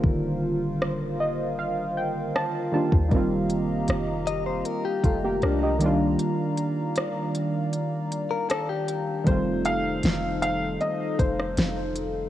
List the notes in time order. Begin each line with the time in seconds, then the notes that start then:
Already playing: D3 D#3 G3 A#3 F4 A#4 C5 F5
0.04 D#1, kick
0.82 cross-stick
1.20 D#5
1.59 F5
1.97 G5
2.36 A5, cross-stick
2.72 D#3 G3 A#3 D4 F4 A5
2.92 D#2, kick
3.09 F1 D#3 G3 A#3 G4 D#5 A#5, kick, closed hi-hat
3.14 C4 F4
3.50 closed hi-hat
3.88 F1, cross-stick, closed hi-hat
4.27 D#5, closed hi-hat
4.46 C5
4.65 A#4, closed hi-hat
4.85 G4
5.04 F1 A3 F4, kick, closed hi-hat
5.24 A#3 G4
5.42 C2 D4 A#4, cross-stick, closed hi-hat
5.63 G4 D#5
5.79 D#3 G3 A#3 D5 F5, closed hi-hat
5.84 D4 F4
6.19 closed hi-hat
6.57 closed hi-hat
6.96 cross-stick, closed hi-hat
7.35 closed hi-hat
7.73 closed hi-hat
8.12 closed hi-hat
8.31 A#4
8.50 A4, cross-stick, closed hi-hat
8.69 G4
8.88 closed hi-hat
9.24 F1 D#3 G3 A3 D#4 A4 C5 F5, kick, closed hi-hat
9.30 C4 F4
9.65 F5, closed hi-hat
10.03 F1, snare, closed hi-hat
10.42 F5, closed hi-hat
10.81 D#5, closed hi-hat
11.19 F1 C5, kick, closed hi-hat
11.40 cross-stick
11.57 F1, snare, closed hi-hat
11.96 closed hi-hat